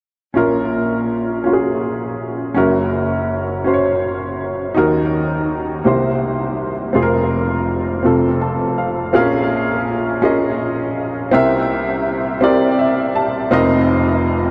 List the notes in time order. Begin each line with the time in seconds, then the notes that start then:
0.34 A#1 A#2 C#4 F4 A#4
1.44 C#4 F4 F#4
1.53 G#4
2.54 F#1 F#2 C#4 F#4 A#4
3.64 C#4 F#4 C5
3.74 C#5
4.75 D#2 D#3 D#4 F#4 A#4
5.84 C2 C3 A#3 C4 E4 G4 C5
6.93 F1 F2 C4 F4 G#4
7.03 A#4
8.03 F1 F2 C4 F4 A4
8.41 A5
8.78 F5
9.13 A#1 A#2 C4 F4 G#4 A#4 F5
9.19 C#4
10.22 C#4 F4 G#4 A#4 D#5
11.31 C2 C3 C4 E4 G4 A#4 E5
12.41 C4 E4 G4 A#4 D5
12.79 E5
13.15 A5
13.51 F1 F2 C4 D#4 F4 A#4 D#5